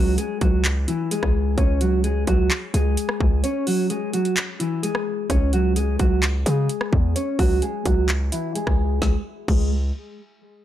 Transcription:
Already playing: 808-style bass C#2, clean electric guitar F#3 F#4
0.18 clean electric guitar G#3 G#4, closed hi-hat
0.41 808-style bass C#2, clean electric guitar F#3 F#4, kick, closed hi-hat
0.65 clap, closed hi-hat
0.88 clean electric guitar E3 E4, closed hi-hat
1.11 clean electric guitar G#3 G#4, closed hi-hat
1.23 808-style bass C#2, kick, cross-stick
1.58 808-style bass C#2, clean electric guitar C#4 C#5, kick, closed hi-hat
1.81 clean electric guitar F#3 F#4, closed hi-hat
2.04 clean electric guitar G#3 G#4, closed hi-hat
2.27 808-style bass C#2, clean electric guitar F#3 F#4, kick, closed hi-hat
2.51 clap, closed hi-hat
2.74 808-style bass C#2, clean electric guitar G#3 G#4, closed hi-hat
2.97 closed hi-hat
3.09 cross-stick
3.20 808-style bass C#2, kick
3.44 clean electric guitar C#4 C#5, closed hi-hat
3.67 clean electric guitar F#3 F#4, open hi-hat
3.90 clean electric guitar G#3 G#4, closed hi-hat
4.13 clean electric guitar F#3 F#4, closed hi-hat
4.25 closed hi-hat
4.37 clap, closed hi-hat
4.60 clean electric guitar E3 E4, closed hi-hat
4.83 clean electric guitar G#3 G#4, closed hi-hat
4.95 cross-stick
5.30 808-style bass C#2, clean electric guitar C#4 C#5, kick, closed hi-hat
5.53 clean electric guitar F#3 F#4, closed hi-hat
5.76 clean electric guitar G#3 G#4, closed hi-hat
5.99 808-style bass C#2, clean electric guitar F#3 F#4, kick, closed hi-hat
6.23 clap, closed hi-hat
6.46 808-style bass C#3, clean electric guitar G#3 G#4, closed hi-hat
6.69 closed hi-hat
6.81 cross-stick
6.93 808-style bass E2, kick
7.16 clean electric guitar C#4 C#5, closed hi-hat
7.39 808-style bass C#2, clean electric guitar F#3 F#4, kick, open hi-hat
7.62 clean electric guitar G#3 G#4, closed hi-hat
7.85 808-style bass C#2, clean electric guitar F#3 F#4, kick, closed hi-hat
8.09 clap, closed hi-hat
8.32 clean electric guitar E3 E4, closed hi-hat
8.55 clean electric guitar G#3 G#4, closed hi-hat
8.67 808-style bass C#2, kick, cross-stick
9.02 808-style bass C#2, clean electric guitar G#3, kick, snare
9.48 808-style bass C#2, clean electric guitar G#3, kick, crash

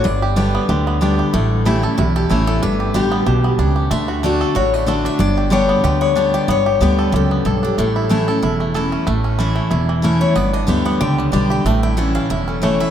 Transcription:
0.04 upright bass G1, steel-string acoustic guitar G2 D5, five-string banjo D4
0.22 five-string banjo G4
0.36 steel-string acoustic guitar D3 G3 B3 G4 B4, five-string banjo D4
0.55 five-string banjo B3
0.69 upright bass D2, steel-string acoustic guitar D3, five-string banjo G4
0.87 five-string banjo B3
1.01 steel-string acoustic guitar D3 G3 B3 G4, five-string banjo D4
1.19 five-string banjo G4
1.34 upright bass A1, steel-string acoustic guitar A2 A4, five-string banjo A3
1.65 steel-string acoustic guitar E3 A3 C#4 E4 G4, five-string banjo E4
1.82 steel-string acoustic guitar C#4 E4, five-string banjo A4
1.98 upright bass B1, steel-string acoustic guitar E2 F#4, five-string banjo E4
2.16 steel-string acoustic guitar G4, five-string banjo A4
2.29 upright bass A1, steel-string acoustic guitar E3 A3 C#4 E4, five-string banjo A3
2.47 steel-string acoustic guitar A4, five-string banjo A4
2.62 upright bass G1, steel-string acoustic guitar G2 B4, five-string banjo D4
2.80 five-string banjo G4
2.94 upright bass A1, steel-string acoustic guitar D3 G3 B3 G4, five-string banjo D4
3.12 five-string banjo B3
3.26 upright bass B1, steel-string acoustic guitar B2, five-string banjo G4
3.44 five-string banjo B3, steel-string acoustic guitar F#4
3.59 upright bass C#2, steel-string acoustic guitar C#4, five-string banjo D4
3.76 five-string banjo G4
3.91 upright bass D2, steel-string acoustic guitar D3 E5, five-string banjo A3
4.08 five-string banjo F#4
4.23 steel-string acoustic guitar D3 A3 D4 F#4 D5, five-string banjo A3
4.41 five-string banjo A4
4.55 upright bass A1, steel-string acoustic guitar A2 C#5, five-string banjo F#4
4.74 five-string banjo A3, steel-string acoustic guitar D5
4.86 steel-string acoustic guitar D3 A3 D4 F#4, five-string banjo A4
5.05 five-string banjo D4, steel-string acoustic guitar E5
5.19 upright bass G1, steel-string acoustic guitar G2 D5, five-string banjo D4
5.38 five-string banjo G4
5.50 steel-string acoustic guitar D3 G3 B3 G4 C#5, five-string banjo D4
5.69 five-string banjo B3
5.84 upright bass D2, steel-string acoustic guitar D3 B4, five-string banjo G4
6.01 five-string banjo B3, steel-string acoustic guitar C#5
6.16 steel-string acoustic guitar D3 G3 B3 G4, five-string banjo D4
6.34 five-string banjo G4, steel-string acoustic guitar D5
6.48 upright bass G1, steel-string acoustic guitar G2 C#5, five-string banjo B3
6.66 five-string banjo G4
6.81 upright bass D2, steel-string acoustic guitar D3 G3 B3 G4 B4, five-string banjo B3
6.99 five-string banjo A4
7.12 upright bass C#2, steel-string acoustic guitar F#2 A4, five-string banjo G4
7.31 five-string banjo B3
7.45 upright bass B1, steel-string acoustic guitar G2, five-string banjo A4
7.63 five-string banjo D4, steel-string acoustic guitar G4
7.78 upright bass A1, steel-string acoustic guitar A2 A4, five-string banjo A3
7.96 five-string banjo E4
8.09 steel-string acoustic guitar E3 A3 C#4 E4, five-string banjo A3
8.28 steel-string acoustic guitar C#4 E4, five-string banjo A4
8.43 upright bass E1, steel-string acoustic guitar E2, five-string banjo E4
8.60 five-string banjo A3
8.74 steel-string acoustic guitar E3 A3 C#4 E4, five-string banjo A4
8.92 five-string banjo C#4
9.07 upright bass A1, steel-string acoustic guitar A2, five-string banjo A3
9.24 five-string banjo C#4
9.39 steel-string acoustic guitar E3 A3 C#4 E4, five-string banjo E4
9.56 five-string banjo A3
9.71 upright bass E1, steel-string acoustic guitar E2, five-string banjo E4
9.89 five-string banjo E3
10.02 steel-string acoustic guitar E3 A3 C#4 E4 E5, five-string banjo C#4
10.21 five-string banjo E4, steel-string acoustic guitar C#5
10.35 upright bass G1, steel-string acoustic guitar G2 D5, five-string banjo B3
10.53 five-string banjo D4, steel-string acoustic guitar D#5
10.67 upright bass D2, steel-string acoustic guitar D3 G3 B3 G4 E5, five-string banjo G4
10.85 five-string banjo B3, steel-string acoustic guitar F#5
11.01 upright bass C#2, steel-string acoustic guitar D3 G5, five-string banjo G4
11.18 five-string banjo G3, steel-string acoustic guitar B4
11.32 upright bass B1, steel-string acoustic guitar D3 G3 B3 G4 D5, five-string banjo D4
11.50 five-string banjo G4, steel-string acoustic guitar G5
11.65 upright bass A1, steel-string acoustic guitar A2 A5, five-string banjo A3
11.83 five-string banjo E4, steel-string acoustic guitar G5
11.97 steel-string acoustic guitar E3 A3 C#4 E4 F#5, five-string banjo A3
12.15 five-string banjo C#4, steel-string acoustic guitar F5
12.30 upright bass E1, steel-string acoustic guitar E2 E5, five-string banjo E4
12.48 five-string banjo C#4, steel-string acoustic guitar A4
12.62 steel-string acoustic guitar E3 A3 C#4 E4 C#5, five-string banjo A3
12.80 five-string banjo E4, steel-string acoustic guitar E5

